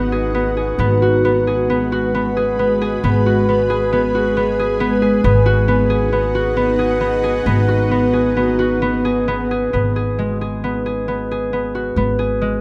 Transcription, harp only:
Already playing: B3 F#4 G#4
0.12 G#4
0.34 B3
0.57 G#4
0.79 B3
1.02 F#4
1.25 B3
1.47 G#4
1.70 B3
1.92 F#4
2.15 B3
2.37 G#4
2.59 B3
2.81 G#4
3.04 B3
3.26 F#4
3.49 B3
3.70 G#4
3.93 B3
4.15 F#4
4.37 B3
4.59 G#4
4.80 B3
5.02 G#4
5.24 B3
5.46 F#4
5.68 B3
5.90 G#4
6.12 B3
6.35 F#4
6.57 B3
6.79 G#4
7.00 B3
7.24 G#4
7.46 B3
7.68 F#4
7.91 B3
8.13 G#4
8.37 B3
8.59 F#4
8.82 B3
9.05 G#4
9.28 B3
9.51 G#4
9.73 B3
9.96 G#4
10.19 G#3
10.41 G#4
10.64 B3
10.86 G#4
11.08 B3
11.31 G#4
11.53 B3
11.75 F#4
11.97 B3
12.19 G#4
12.41 G#3

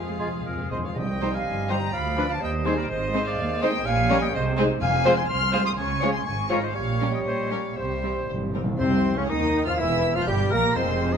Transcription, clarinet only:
0.20 F4
0.45 A#4
0.70 G#4
0.93 D#5
1.92 D5
2.41 C5
3.86 C#5
4.35 C5
5.05 C5
5.52 C5
6.00 C#5
6.50 C#5
6.73 C#5
7.77 C5
8.78 C4
9.17 C#4
9.28 D#4
9.65 F4
9.77 E4
10.15 F4
10.27 G4
10.50 A#4
10.75 C5

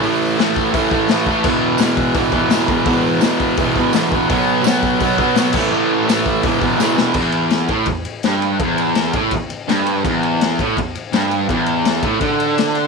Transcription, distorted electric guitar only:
0.01 A2 E3 A3
0.37 A2 E3
0.41 A3
0.72 A2 E3 A3
0.90 A3
0.94 E3
1.08 A2 E3
1.12 A3
1.27 E3 A3
1.44 E2 B2 E3
1.80 E2 B2 E3
2.14 E2 B2 E3
2.32 B2 E3
2.50 E2 B2 E3
2.67 E3
2.71 B2
2.85 E2 B2 E3
3.21 E2 B2
3.26 E3
3.58 E2 B2
3.62 E3
3.75 B2 E3
3.93 E2 B2 E3
4.11 B2 E3
4.29 B2 F#3
4.33 B3
4.62 B2 F#3
4.66 B3
4.99 B2 F#3 B3
5.18 F#3 B3
5.35 B2 F#3 B3
5.53 E3 A3
5.57 A2
5.71 A2 E3 A3
6.05 A2 E3 A3
6.42 E2 B2 E3
6.60 B2 E3
6.78 E2 B2
6.82 E3
6.96 B2 E3
7.14 E2
7.69 A2
7.86 E2
8.24 G2
8.60 E2
9.15 A2
9.34 E2
9.68 G2
10.04 E2
10.60 A2
10.77 E2
11.12 G2
11.48 E2
12.02 A2
12.21 D3

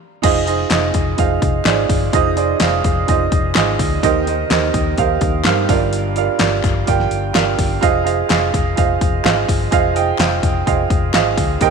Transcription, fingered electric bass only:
0.24 F1
0.71 F1
0.94 F1
1.19 F1
1.42 F1
1.66 G#1
1.89 G1
2.14 F1
2.61 F1
2.84 F1
3.08 F1
3.32 F1
3.57 G#1
3.79 D2
4.04 D#2
4.51 D#2
4.74 D#2
4.98 D#2
5.21 D#2
5.46 G2
5.69 G1
6.40 G1
6.64 G1
6.88 G1
7.11 G1
7.35 G1
7.59 G1
7.83 F1
8.30 F1
8.54 F1
8.78 F1
9.01 F1
9.25 G#1
9.49 G1
9.72 F1
10.19 F1
10.43 F1
10.67 F1
10.90 F1
11.14 G#1
11.38 D2
11.61 D#2

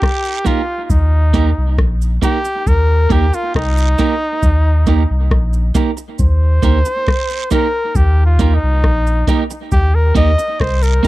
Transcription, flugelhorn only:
Already playing: G4
0.46 F4
0.84 F4
0.90 D#4
2.24 G4
2.68 A#4
3.12 G4
3.35 F4
3.56 D#4
6.20 C5
7.51 A#4
7.96 G4
8.26 F4
8.54 D#4
9.72 G4
9.95 A#4
10.17 D#5
10.60 C5
10.83 A#4

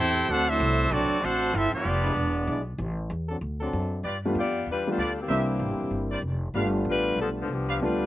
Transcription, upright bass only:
Already playing: E2
0.29 D2
0.60 C2
0.91 B1
1.10 muted upright bass stroke
1.23 A1
1.54 G1
1.73 muted upright bass stroke
1.85 F1
2.16 E1
2.47 B1
2.78 A1
3.10 E2
3.41 D2
3.73 F#2
4.04 G2
4.35 F2
4.66 E2
4.98 D2
5.28 C2
5.60 A1
5.70 G1
5.80 E1
5.91 G1
6.22 F1
6.54 G1
6.85 A1
7.16 B1
7.48 C2
7.80 D2

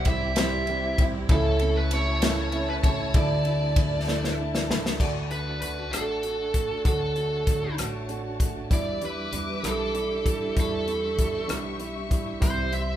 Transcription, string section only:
Already playing: E4 G4 D5
1.30 C#5 A5
3.13 D5
5.00 F#4 D5 A5
6.86 C#5
8.71 G4 E5 D6
10.57 C#6
12.43 C6

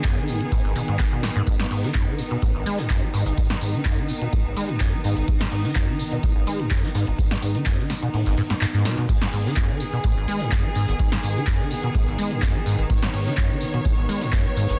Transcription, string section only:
Already playing: D#3 B3 G#4
1.47 D#4
9.09 D#3 B3 G#4
12.90 C#5

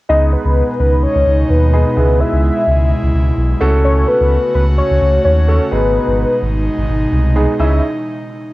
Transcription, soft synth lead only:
0.09 D#5
0.33 B4
0.80 B4
1.03 C#5
1.50 B4
1.73 B4
2.20 E5
3.85 C#5
4.08 B4
4.55 B4
4.78 C#5
5.24 C#5
5.71 B4
7.60 E5

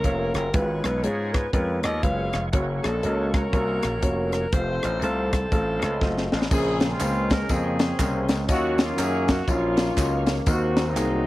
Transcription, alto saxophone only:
Already playing: A#4
0.35 A#4
0.54 B4
0.85 B4
1.04 G#4
1.33 B4
1.53 B4
1.83 D#5
2.03 F5
2.83 A4
3.33 A#4
4.33 A#4
4.53 C5
5.03 A4
5.33 A4

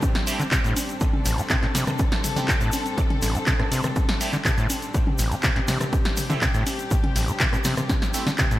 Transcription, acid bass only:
0.40 D3
0.52 C3
0.64 A2
1.01 A2
1.26 A1
1.38 D3
1.50 C3
1.62 A2
1.75 C3
1.87 C3
2.36 D3
2.48 C3
2.61 A2
2.97 A2
3.22 A1
3.35 D3
3.47 C3
3.59 A2
3.71 C3
3.84 C3
4.33 D3
4.45 C3
4.58 A2
4.94 A2
5.19 A1
5.31 D3
5.43 C3
5.56 A2
5.68 C3
5.80 C3
6.30 D3
6.42 C3
6.54 A2
6.91 A2
7.16 A1
7.28 D3
7.40 C3
7.53 A2
7.65 C3
7.77 C3
8.27 D3
8.39 C3
8.51 A2

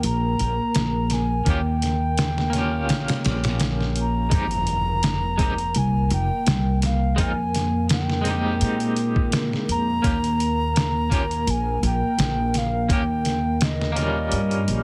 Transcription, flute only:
0.05 A#5
1.13 G#5
1.49 G5
4.01 A#5
5.78 G#5
6.13 G5
6.85 F5
7.21 G#5
7.93 G5
9.71 A#5
11.50 G#5
11.86 G5
12.58 F5
12.93 G5
13.64 D#5

